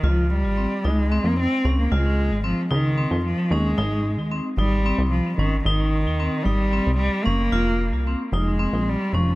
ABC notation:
X:1
M:7/8
L:1/16
Q:1/4=112
K:Dblyd
V:1 name="Vibraphone"
F4 C2 E2 C4 D2 | F4 C2 E2 C4 D2 | E4 C2 E2 C4 D2 | E4 C2 E2 C4 D2 |
F4 C2 E2 C4 D2 |]
V:2 name="Cello" clef=bass
F,2 G,4 A,3 B, C3 B, | A,4 F,2 E,4 F,2 A,2- | A,4 z2 G,4 F,2 E,2 | E,6 G,4 G,2 B,2- |
B,4 z2 A,4 G,2 F,2 |]
V:3 name="Analog synth bass" clef=bass
D,,3 A,,,2 z D,,3 F,,2 z D,,2 | D,,3 A,,,2 z D,,3 F,,2 z E,,2 | A,,,3 E,,2 z A,,,3 C,,2 z A,,,2 | A,,,3 E,,2 z A,,,3 C,,2 z _G,,,2 |
F,,,3 C,,2 z F,,,3 B,,,2 z F,,,2 |]